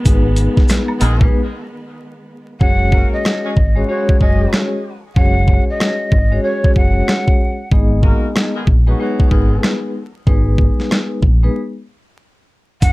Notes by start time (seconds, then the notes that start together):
Already playing: D#3 G#3 B3
0.05 G#1 G#3 B3 D#4 G#4 B4, kick, closed hi-hat, maracas
0.36 closed hi-hat, maracas
0.57 kick, snare
0.68 cross-stick, snare, closed hi-hat, maracas
0.88 high woodblock
0.99 A#1 D#3 G#3 B3 G#4, closed hi-hat, high woodblock, maracas
1.21 G#3 B3 D#4 G#4 B4, kick
2.60 F#1 G#3 C#4 F#4 G#4 C#5 F#5, kick
2.92 A#3 F#4 A#4, kick
3.13 D#5
3.25 cross-stick, snare
3.44 G#3 C#4 G#4
3.57 G#1, kick
3.75 C#3 F#3 G#3 C#4 F#4 G#4 C#5
3.88 C#3 F#3 G#3 C#4 F#4 G#4 C#5
4.09 muted fingered electric bass stroke, kick
4.20 F#1 G#3 C#4 G#4 D#5, kick
4.53 cross-stick, snare
5.15 F#1 G#3 C#4 F#4 G#4 C#5 F#5, kick
5.48 kick
5.70 D#5
5.80 cross-stick, snare
6.12 G#1, kick
6.31 G#3 C#4 F#4 G#4 C#5
6.43 G#3 C#4 F#4 G#4 C#5
6.64 muted fingered electric bass stroke, kick
6.76 F#1 F#5, kick
7.08 cross-stick, snare
7.28 kick
7.72 G#1 G#3 B3 D#4 G#4 D#5, kick
8.01 A#3 F#4 A#4, kick
8.36 cross-stick, snare
8.55 D#3 G#3 B3 G#4
8.67 A#1, kick
8.87 F#3 G#3 B3 D#4 F#4 G#4 B4
9.00 F#3 G#3 B3 D#4 F#4 G#4 B4
9.20 muted fingered electric bass stroke, kick
9.29 G#1 D#3 G#3 B3 G#4, kick
9.63 cross-stick, snare
10.27 G#1 G#3 B3 D#4 G#4 B4, kick
10.58 kick
10.80 snare
10.91 cross-stick, snare
11.22 A#1, kick
11.43 G#3 B3 D#4 G#4 B4
12.81 F#1 F#5, kick, closed hi-hat, maracas